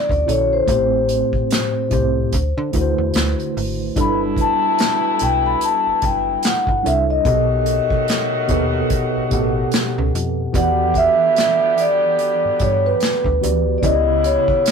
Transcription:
Already playing: D5
0.09 D2, kick, closed hi-hat
0.26 A#1 D3 C#4 E4 F#4 A4 C#5, closed hi-hat
0.53 C5
0.66 A1 A2 A3 B3 G4 C5, kick, closed hi-hat
0.74 C4
1.09 closed hi-hat
1.33 kick
1.51 snare, clap, closed hi-hat
1.90 C2 A2 A3 C4 G4 C5, kick, closed hi-hat
2.32 D2, kick, closed hi-hat
2.58 D3
2.72 D2 D3 A3 E4 F#4 B4, kick, closed hi-hat
2.81 C5
2.98 E2
3.14 D2, snare, clap, closed hi-hat
3.40 closed hi-hat
3.57 G#1, open hi-hat
3.96 G1 B2 E3 G3 A3 D4 E4 A4 B4, kick, closed hi-hat
4.01 B5
4.37 kick, closed hi-hat
4.41 A5
4.79 snare, clap, closed hi-hat
5.19 B1, closed hi-hat
5.23 G5
5.46 B5
5.61 A5, closed hi-hat
5.87 F#1
6.02 F#1 G5, kick, closed hi-hat
6.43 F#5, snare, clap, closed hi-hat
6.67 G1, kick
6.83 C2 G3 D4 E4 A4 C#5 E5, closed hi-hat
7.10 D#5
7.25 B1 B2 D#3 F#3 A3 B3 F#4 G4 A4 D#5, kick, closed hi-hat
7.66 closed hi-hat
7.90 kick
8.08 snare, clap, closed hi-hat
8.48 D#2 B2 B3 G4 A4 B4, kick, closed hi-hat
8.90 kick, closed hi-hat
9.16 A1
9.30 A1 B2 B3 G4 A4 F#5, kick, closed hi-hat
9.72 snare, clap, closed hi-hat
9.98 C#2
10.15 F2, closed hi-hat
10.53 E2 D3 E3 G3 B3 F#4 G4 D5 F#5, kick, closed hi-hat
10.94 E5, kick, closed hi-hat
11.36 snare, clap, closed hi-hat
11.78 D5, closed hi-hat
12.19 closed hi-hat
12.45 G2
12.59 G2 C#5, kick, closed hi-hat
12.86 B4
13.00 snare, clap, closed hi-hat
13.25 D2, kick
13.41 D2 E3 B3 F#4 G4 D5, closed hi-hat
13.78 C#3 D5
13.82 C#2 C#3 E3 B3 E4 G4 C#5 D#5, kick, closed hi-hat
14.24 C#5, closed hi-hat
14.48 kick
14.66 snare, closed hi-hat

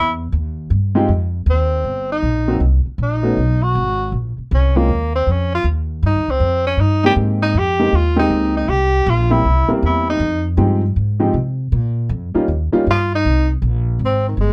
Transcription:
Already playing: E2 E4
0.32 D#2
0.70 G2
0.95 G#3 C4 D#4 F4 G4
1.08 F2
1.46 D#2 C4
1.84 G1
2.12 D#4
2.23 A#1
2.48 F#3 A#3 C4 D#4 F#4
2.60 C2
2.86 muted upright bass stroke
2.98 A#1
3.03 D#4
3.23 A3 B3 C#4 D#4 F#4
3.37 B1
3.63 F#4
3.75 G#1
4.12 A#1
4.38 muted upright bass stroke
4.51 C2 C#4
4.76 G#3 A#3 C4 C#4 F4
4.88 D#2
5.15 C4
5.27 F2
5.31 C#4
5.55 F4
5.64 D#2
6.03 G2 D#4
6.15 D#2
6.28 C#2 C4
6.40 F2
6.67 C#4
6.77 G2 D#4
7.04 G#3 A#3 C4 D#4 G4
7.16 G#2
7.42 D#4
7.54 F2
7.58 G4
7.79 G#3 A#3 C4 D#4 G4
7.93 D#2 F4
8.16 G#3 A#3 C4 D#4 G4
8.30 C#2
8.57 D#4
8.68 C2 G4
9.06 A#1 F4
9.30 G3 A#3 C4 E4 G4
9.45 C2
9.68 G3 A#3 C4 E4 A#4, muted upright bass stroke
9.82 E2 E4
10.10 D#4
10.19 F2
10.57 G2 F3 G#3 C4 D#4 G4
10.96 G#2
11.20 F3 G#3 C4 D#4 G4
11.34 C3
11.72 A#2
12.09 F2
12.34 G3 A#3 C#4 D#4 F4, muted upright bass stroke
12.48 D#2
12.72 G3 A#3 C#4 D#4 F4, muted upright bass stroke
12.87 G2 F4
13.15 D#4
13.25 C2
13.62 A#1
13.99 G#1
14.05 C4
14.29 D#3
14.37 G1 G#3

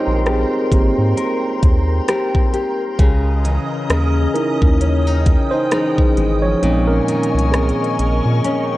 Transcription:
Already playing: G#3 C4 D#4 F4 G4 A#4 B4 C5 C#5 D#5 G5 A#5 C6
0.07 A#1
0.26 C4 G4 G#4, cross-stick, closed hi-hat
0.71 G#1 A#3 C4 G4, kick, closed hi-hat
0.98 G#2
1.17 A#4, closed hi-hat
1.63 D#2, kick, closed hi-hat
2.08 C4 G4 A#4, cross-stick, closed hi-hat
2.35 kick
2.53 G4, closed hi-hat
2.99 C#2 C#3 C#4 D#5 D#6, kick, closed hi-hat
3.44 E3, closed hi-hat
3.89 D#2 G#3, cross-stick, closed hi-hat
4.34 C#4 D#4 E4 A#4, closed hi-hat
4.62 D#2, kick
4.81 C#4 G5, closed hi-hat
5.07 D#4
5.26 kick, closed hi-hat
5.51 D#4 C5
5.72 E3 G#3 D#4, cross-stick, closed hi-hat
5.98 kick
6.17 G#1 G#3, closed hi-hat
6.42 F3 C#5
6.62 A#1 A#2 G#3 C4 C#4 D#4 A#4 D#5 G#5 C#6, closed hi-hat
6.87 C#4 A#4
7.08 D#3, closed hi-hat
7.23 closed hi-hat
7.34 C2
7.39 closed hi-hat
7.52 G#3 C4 G#4, cross-stick, closed hi-hat
7.69 closed hi-hat
7.84 closed hi-hat
7.99 A#1, closed hi-hat
8.26 A#2
8.45 C#4 G5, closed hi-hat

